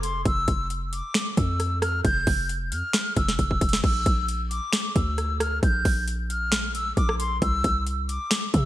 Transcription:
Already playing: F1
0.03 C6, closed hi-hat
0.25 F1 E6, kick, closed hi-hat
0.48 F1, kick, closed hi-hat
0.70 closed hi-hat
0.92 D6, closed hi-hat
1.14 finger snap, snare, closed hi-hat
1.37 F2 E6, kick, closed hi-hat
1.60 cross-stick, closed hi-hat
1.82 F6, cross-stick, closed hi-hat
2.04 F1 G6, kick, closed hi-hat
2.27 F1, kick, open hi-hat
2.49 closed hi-hat
2.71 F2 F6, closed hi-hat
2.93 finger snap, snare, closed hi-hat
3.16 F1 E6, kick, closed hi-hat
3.28 snare
3.39 F1 E6, kick, closed hi-hat
3.51 kick
3.61 kick, closed hi-hat
3.69 closed hi-hat
3.73 snare, closed hi-hat
3.84 A#1 E6, kick, crash
4.06 A#1, kick, closed hi-hat
4.28 closed hi-hat
4.50 D6, closed hi-hat
4.73 finger snap, snare, closed hi-hat
4.96 D2 E6, kick, closed hi-hat
5.18 cross-stick, closed hi-hat
5.40 F6, cross-stick, closed hi-hat
5.63 A#1 G6, kick, closed hi-hat
5.85 A#1, kick, open hi-hat
6.08 closed hi-hat
6.30 F6, closed hi-hat
6.52 finger snap, snare, closed hi-hat
6.75 E6, closed hi-hat
6.96 A#1 D6, kick, closed hi-hat
7.09 cross-stick
7.20 C6, closed hi-hat
7.42 C2 E6, kick, closed hi-hat
7.64 C2, kick, closed hi-hat
7.87 closed hi-hat
8.09 D6, closed hi-hat
8.31 finger snap, snare, closed hi-hat
8.54 C3 E6, kick, closed hi-hat

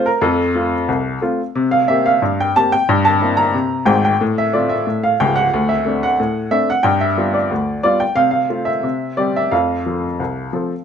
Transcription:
0.06 A#4
0.21 F2 A4
0.55 A3 C4 F4
0.88 C2
1.22 A3 C4 F4
1.55 C3
1.71 F5
1.88 A#3 C4 G4 E5
2.06 F5
2.22 G2
2.40 G5
2.56 A#3 C4 G4 A5
2.72 G5
2.89 G2
3.05 A5
3.21 A#3 C4 E4
3.37 A#5
3.54 C3
3.85 G#1 G#2 G5
4.05 G5
4.21 A2
4.38 E5
4.53 A3 C4 F4 D5
4.69 E5
4.87 A2
5.04 F5
5.20 C#1 C#2 G5
5.36 F#5
5.54 D2
5.69 E5
5.85 A3 C4 D4
6.03 F#5
6.20 A2
6.51 A3 C4 D4 E5
6.70 F#5
6.83 G2 G5
7.01 E5
7.17 G3 B3 F4
7.34 D5
7.51 D2
7.83 G3 B3 F4 D5
8.00 G5
8.16 C3 F5
8.31 F5
8.49 A3 C4 F4
8.65 E5
8.83 C3
9.17 G3 C4 G4 D5
9.36 E5
9.51 F2 F5
9.86 F3 C4 A4
10.20 C2
10.53 F3 C4 A4

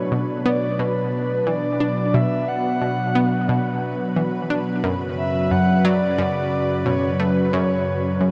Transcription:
Already playing: B2 F#3 D4 B4 C#5
0.12 B2
0.46 B3 D5
0.79 B2 B4
1.47 E3 D5
1.80 D4
2.14 B2 E5
2.48 F#5
2.82 B2
3.15 B3
3.49 B2
4.16 E3
4.50 D4
4.84 F#2 C#3
5.17 E5
5.51 F#2 F#5
5.85 F#3 D5
6.18 F#2
6.86 B2 C#5
7.20 A3 B4
7.53 F#2 C#5
8.21 F#2

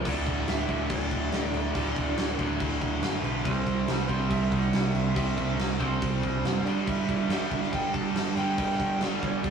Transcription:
0.03 D1 D2 A2 D3, kick, crash
0.07 D5
0.26 D1, kick, crash
0.47 D1 E5, snare, crash
0.67 D1 D2 A2 D3, kick, crash
0.89 D1 D5, kick, crash
1.11 D1, kick, crash
1.32 D1, snare, crash
1.52 D1 D5, crash
1.73 D1 D2 A2 D3, kick, crash
1.96 D1, kick, crash
2.16 D1, snare, crash
2.38 D1 D2 A2 D3, kick, crash
2.60 D1, kick, crash
2.82 D1, kick, crash
3.02 F#1, snare, crash
3.23 B1 B4, crash
3.44 C2 C3 G3 C4 C5, kick, crash
3.67 C2, kick, crash
3.87 C2, snare, crash
4.05 C4 B4
4.09 C2 C3 G3, kick, crash
4.30 C2 E5, kick, crash
4.52 C2 F#5, kick, crash
4.72 C2, snare, crash
4.93 C2 E5, crash
5.15 C2 C3 G3 C4 E5, kick, crash
5.38 C2, kick, crash
5.58 C2, snare, crash
5.79 C2 C3 G3 C4 C5, kick, crash
6.02 C2, kick, crash
6.23 C2, kick, crash
6.43 F#1, snare, crash
6.65 G1 G2 D3 G3 D5, crash
6.87 G1 E5, kick, crash
7.09 G1, kick, crash
7.28 G1 G2 D3 G3, snare, crash
7.51 G1, kick, crash
7.63 snare
7.73 G1 G5, kick, crash
7.94 G1 A5, kick, crash
8.15 G1, snare, crash
8.35 G1 G2 D3 G3 G5, crash
8.58 G1 G5, kick, crash
8.80 G1, kick, crash
9.00 G1 G2 D3 G3, snare, crash
9.22 G1 D5, kick, crash
9.44 G1, kick, crash

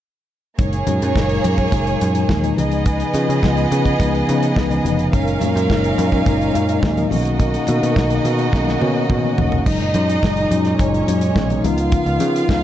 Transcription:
0.58 F#1 A#2 F#3 G#3 A#3 D#4 G#4 C#5, kick, closed hi-hat
0.73 closed hi-hat
0.87 F#2 A#2 F#3 G#3 D#4, closed hi-hat, muted conga
1.02 F#2, closed hi-hat
1.15 F#1 A#2 F#3 G#3 D#4, kick, snare, high conga
1.29 closed hi-hat
1.44 F#2, closed hi-hat, muted conga
1.58 kick, closed hi-hat
1.72 F#1 A#2 F#3 G#3 D#4, kick, closed hi-hat, muted conga
1.87 closed hi-hat
2.01 F#2 A#2 F#3 G#3 D#4, closed hi-hat
2.15 closed hi-hat
2.29 D#2, kick, snare, high conga
2.43 A#2 F#3 G#3 D#4, closed hi-hat, high conga
2.57 C#2 C#3 F3 B3 D#4 G#4 D#5, closed hi-hat, high conga
2.71 closed hi-hat
2.86 kick, closed hi-hat
3.00 closed hi-hat
3.13 C#3 F3 B3 F4, closed hi-hat, muted conga
3.29 C#3, closed hi-hat
3.42 C#2 C#3 F3 B3 F4, kick, snare, high conga
3.57 closed hi-hat
3.71 C#3, closed hi-hat, muted conga
3.85 kick, closed hi-hat
3.99 C#2 C#3 F3 B3 D#4, kick, closed hi-hat, muted conga
4.15 closed hi-hat
4.28 C#3 F3 B3 D#4 F5, closed hi-hat
4.43 closed hi-hat
4.56 C#2 D#5, kick, snare, high conga
4.70 C#3 F3 B3 D#4, closed hi-hat, high conga
4.85 F1 B4, closed hi-hat, high conga
4.99 closed hi-hat
5.12 F#1 A#2 F#3 G#3 C#4 D#4 A#4 F5, kick, closed hi-hat
5.28 closed hi-hat
5.41 F#2 A#2 F#3 G#3 A#3, closed hi-hat, muted conga
5.56 F#2, closed hi-hat
5.69 F#1 A#2 F#3 G#3 D#4, kick, snare, high conga
5.84 closed hi-hat
5.98 F#2, closed hi-hat, muted conga
6.12 kick, closed hi-hat
6.26 F#1 A#2 F#3 G#3 D#4, kick, closed hi-hat
6.41 closed hi-hat
6.54 F#2 A#2 F#3 G#3 D#4, closed hi-hat
6.69 closed hi-hat
6.83 D#2, kick, snare, high conga
6.97 A#2 F#3 G#3 D#4, closed hi-hat, high conga
7.11 B1 B2 C#3 D#3 A#3 C#4 D#4 F#4 D#5, open hi-hat, high conga
7.25 closed hi-hat
7.40 kick, closed hi-hat
7.54 closed hi-hat
7.67 B2 D#3 A#3 D#4, closed hi-hat, muted conga
7.83 B2, closed hi-hat
7.95 B1 B2 D#3 A#3 D#4, kick, snare, high conga
8.10 closed hi-hat
8.25 B2, closed hi-hat, muted conga
8.39 closed hi-hat
8.52 B1 B2 D#3 A#3 C#4, kick, snare
8.68 snare
8.80 B2 D#3 A#3 C#4 C#5, high tom
8.96 D#5
9.10 B2 F#5, kick, mid tom, high conga
9.23 B2 D#3 A#3 C#4, high conga
9.38 F1 F#5, floor tom, high conga
9.52 floor tom
9.65 F#1 A#2 F#3 G#3 D#4 D#5, kick, crash
9.80 F#1, closed hi-hat
9.94 F#2, closed hi-hat, muted conga
10.09 closed hi-hat
10.22 F#1 A#2 F#3 G#3 D#4, kick, snare, high conga
10.37 closed hi-hat
10.51 F#2 A#2 F#3 G#3 D#4, closed hi-hat, muted conga
10.65 snare, closed hi-hat
10.79 F#1 C#4 C#5, kick, closed hi-hat, muted conga
10.93 A#2 F#3 G#3 D#4, closed hi-hat
11.08 F#2, closed hi-hat
11.21 closed hi-hat
11.36 B1, kick, snare, high conga
11.50 A#2 F#3 G#3 D#4, closed hi-hat, high conga
11.64 C#2 C#3 D#3 F3 B3 D#4 F4 F5, closed hi-hat, high conga
11.78 closed hi-hat
11.92 kick, closed hi-hat
12.06 C#2, closed hi-hat
12.20 C#3, closed hi-hat, muted conga
12.36 closed hi-hat
12.49 C#2 C#3 F3 B3 D#4, kick, snare, high conga

